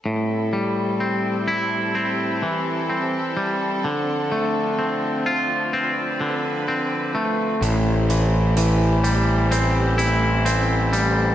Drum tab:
HH |--------|--------|xxxxxxxx|